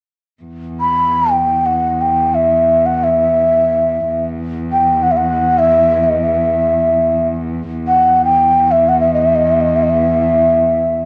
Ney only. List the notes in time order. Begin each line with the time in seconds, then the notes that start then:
0.80 B5
1.31 G5
1.66 F#5
2.01 G5
2.35 E5
2.86 F#5
3.04 E5
4.72 G5
5.03 F#5
5.11 E5
5.17 F#5
5.58 E5
6.03 D#5
6.23 E5
7.87 F#5
8.25 G5
8.71 E5
8.89 F#5
9.00 E5
9.14 D#5
9.22 E5
9.35 D#5
9.47 E5
9.61 D#5
9.76 E5
9.83 D#5
9.90 E5